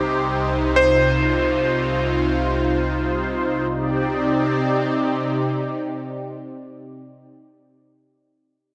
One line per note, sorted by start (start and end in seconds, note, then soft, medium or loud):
0.00 3.66 C2 medium
0.00 3.66 C3 medium
0.00 3.66 D#4 medium
0.00 0.75 G4 medium
0.00 0.81 G4 loud
0.00 3.66 C5 medium
0.76 3.67 F4 medium
0.76 2.92 C5 loud
3.70 7.27 C3 medium
3.70 7.27 C4 medium
3.70 7.27 D#4 medium
3.70 7.27 G4 medium
3.70 7.27 D5 medium